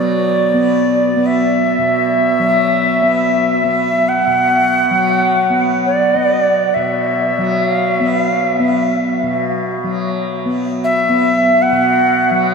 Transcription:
Already playing: B2 F#3 B3 D5 A6
0.54 B3
1.16 B3
1.26 E5
1.79 B2
2.39 F#3
3.02 B3
3.64 B3
4.09 F#5
4.27 B2
4.91 F#3
5.50 B3
5.86 D5
6.15 B3
6.74 B2 E5
7.38 F#3
7.70 F5
7.96 B3 E5
8.24 F5
8.50 E5
8.59 B3
9.23 B2
9.84 F#3
10.45 B3
10.84 E5
11.09 B3
11.62 F#5
11.72 B2
12.31 F#3

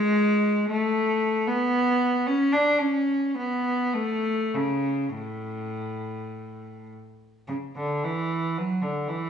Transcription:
Already playing: G#3
0.70 A3
1.48 B3
2.27 C#4
2.52 D4
2.78 C#4
3.38 B3
3.93 A3
4.55 C#3
5.15 A2
7.48 C#3
7.76 D3
8.04 E3
8.58 F#3
8.82 D3
9.08 E3

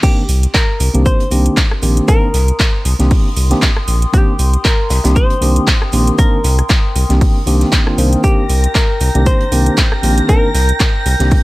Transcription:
0.03 D#3 A#3 C4 D4 G4 A#4 G5 C6 D#6, kick, closed hi-hat, crash, shaker
0.29 C2, open hi-hat, shaker
0.43 closed hi-hat
0.54 A#4, kick, snare, clap, closed hi-hat, shaker
0.80 C2, open hi-hat, shaker
0.94 C2 D#3 A#3 C4 D4 G4, closed hi-hat
1.06 C5, kick, closed hi-hat, shaker
1.20 closed hi-hat
1.31 C2 D#3 A#3 C4 D4 G4, open hi-hat, shaker
1.46 closed hi-hat
1.57 kick, snare, clap, closed hi-hat, shaker
1.71 cross-stick
1.82 A#1 D#3 A#3 C4 D4 G4, open hi-hat, shaker
1.97 closed hi-hat
2.08 D#3 A#3 C4 D4 A#4, kick, closed hi-hat, shaker
2.34 C2, snare, open hi-hat, shaker
2.48 closed hi-hat
2.60 kick, snare, clap, closed hi-hat, shaker
2.85 C2, open hi-hat, shaker
2.99 C2 D#3 A#3 C4 D4 G4, snare, closed hi-hat
3.11 kick, closed hi-hat, open hi-hat
3.37 C2, open hi-hat, shaker
3.50 D#3 A#3 C4 D4 G4, snare, closed hi-hat
3.62 kick, snare, clap, closed hi-hat, shaker
3.77 cross-stick
3.88 A#1, open hi-hat, shaker
4.02 closed hi-hat
4.13 D#3 A#3 C4 D4 G4, kick, closed hi-hat, shaker
4.39 C2, open hi-hat, shaker
4.53 closed hi-hat
4.65 A#4, kick, snare, clap, closed hi-hat, shaker
4.90 C2, snare, open hi-hat, shaker
5.04 C2 D#3 A#3 C4 D4 G4, snare, closed hi-hat, shaker
5.16 C5, kick, closed hi-hat, shaker
5.30 closed hi-hat
5.41 C2 D#3 A#3 C4 D4 G4, open hi-hat, shaker
5.56 closed hi-hat
5.67 kick, snare, clap, closed hi-hat, shaker
5.82 cross-stick
5.92 A#1 D#3 A#3 C4 D4 G4, open hi-hat, shaker
6.07 closed hi-hat
6.18 D#3 A#3 C4 D4 A#4, kick, closed hi-hat, shaker
6.44 C2, snare, open hi-hat, shaker
6.59 cross-stick, closed hi-hat
6.69 kick, snare, clap, closed hi-hat, shaker
6.96 C2, open hi-hat, shaker
7.09 C2 D#3 A#3 C4 D4 G4, snare, closed hi-hat
7.21 kick, closed hi-hat, open hi-hat
7.46 C2 D#3 A#3 C4 D4 G4, open hi-hat, shaker
7.61 snare, closed hi-hat
7.72 kick, snare, clap, closed hi-hat, shaker
7.86 D#3 A#3 C4 D4 F4, cross-stick
7.98 C2 D#3 A#3 C4 D4 C5, open hi-hat, shaker
8.13 closed hi-hat
8.23 D#3 A#3 C4 D4 G4 A#5 G6 A#6, kick, closed hi-hat, shaker
8.49 C2, open hi-hat, shaker
8.64 closed hi-hat
8.75 A#4, kick, snare, clap, closed hi-hat, shaker
9.00 C2, open hi-hat, shaker
9.15 C2 D#3 A#3 C4 D4 G4, closed hi-hat
9.26 C5, kick, closed hi-hat, shaker
9.41 closed hi-hat
9.51 C2 D#3 A#3 C4 D4 G4, open hi-hat, shaker
9.66 closed hi-hat
9.77 kick, snare, clap, closed hi-hat, shaker
9.92 cross-stick
10.03 A#1 D#3 A#3 C4 D4 G4, open hi-hat, shaker
10.18 closed hi-hat
10.28 D#3 A#3 C4 D4 A#4, kick, closed hi-hat, shaker
10.54 C2, snare, open hi-hat, shaker
10.69 closed hi-hat
10.80 kick, snare, clap, closed hi-hat, shaker
11.06 C2, open hi-hat, shaker
11.20 C2 D#3 A#3 C4 D4 G4, snare, closed hi-hat
11.31 kick, closed hi-hat, open hi-hat

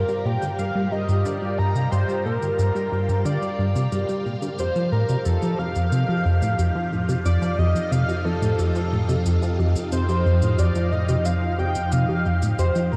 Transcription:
Already playing: G2 G3 F4 G4 A#4 F5
0.09 G3, shaker
0.25 A#2 G5
0.42 D3, low bongo, shaker
0.59 G2 F5, shaker
0.75 G3
0.92 G2 D#5, low bongo
1.09 G2, shaker
1.25 D3 D5, shaker
1.42 G3, low bongo
1.58 G2 A#5
1.75 C3, shaker
1.92 G2 C5, low bongo, shaker
2.08 G3, shaker
2.25 A#2 A#4
2.42 D3, low bongo, shaker
2.59 G2, shaker
2.75 G3, shaker
2.92 G2, low bongo
3.09 G2, shaker
3.25 D3 D5, shaker
3.42 G3, low bongo, shaker
3.59 G2
3.75 C3, shaker
3.92 G2, low bongo, shaker
4.09 G3, shaker
4.25 A#2
4.42 D3, low bongo, shaker
4.58 F2 F3 C5, low bongo, shaker
4.76 F3, shaker
4.80 D#4
4.92 A2 A#4
5.09 C3, low bongo, shaker
5.25 F2 A4, shaker
5.42 F3, shaker
5.59 F2 F5, low bongo
5.75 F2, shaker
5.92 C3, shaker
6.09 F3, low bongo
6.25 F2
6.42 A2, shaker
6.59 F2, low bongo, shaker
6.75 F3
6.92 A2
7.09 C3, low bongo, shaker
7.25 F2 D5, shaker
7.42 F3, shaker
7.58 F2 D#5, low bongo
7.75 F2, shaker
7.91 C3 F5, shaker
8.09 F3, low bongo, shaker
8.25 F2 A4
8.42 A2, shaker
8.59 F2, low bongo, shaker
8.75 F3, shaker
8.93 A2
9.09 C3, low bongo, shaker
9.26 F2, shaker
9.42 F3, shaker
9.59 F2, low bongo
9.76 F2, shaker
9.92 C3 C5, shaker
10.09 F3, low bongo, shaker
10.26 F2
10.42 A2, shaker
10.59 F2 D5, low bongo, shaker
10.75 F3, shaker
10.92 A2 D#5
11.09 C3, low bongo, shaker
11.25 F2 F5, shaker
11.43 F3
11.59 F2 G5, low bongo
11.75 F2, shaker
11.92 C3 F5, shaker
12.09 F3, low bongo
12.26 F2
12.42 A2, shaker
12.59 F2 C5, low bongo, shaker
12.75 F3, shaker
12.92 A2 A#4

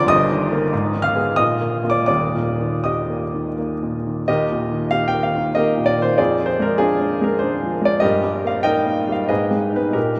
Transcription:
Already playing: F1 F2 D3 F3 D4 G#4 A#4 C5 D5 G#5 A#5 C6 D6
0.06 G1 G2 D#5 D#6
0.31 D#3
0.52 A#3 A#4
0.73 G#2
0.94 D#3
1.02 F5 F6
1.15 B3 G#4
1.36 A#2 D#5 D#6
1.61 A#3
1.84 A#3 F4
1.90 D5 D6
2.06 D#1 D#2 D5 D6
2.35 A#2
2.61 D#3
2.84 G4 D#5 D#6
3.10 A#3
3.34 D#3
3.58 A#3
3.83 A#2
4.07 D#3
4.28 D#2 G4 A#4 D#5
4.51 A#2
4.72 D#3
4.91 G4 F5
5.08 G5
5.14 A#3
5.23 F5
5.35 D#3
5.55 A#3 G4 A#4 D#5
5.77 A#2
5.86 D5
5.98 D#3 C5
6.18 F2 F4 G#4 D5
6.39 F3
6.46 C5
6.60 G#3 A#4
6.78 D4 F4 G#4
6.99 D4
7.22 G#3 A#4
7.39 D4 C5
7.62 F3
7.82 G#3 D5
8.00 G2 G4 A#4 D#5
8.24 G3
8.44 A#3 F5
8.63 D#4 A#4 D#5 G5
8.86 A#3
9.08 G3 F5
9.28 G#2 G#4 B4 D#5
9.51 G#3
9.72 B3 D#4 B4
9.91 A#2 D#4 G4 A#4

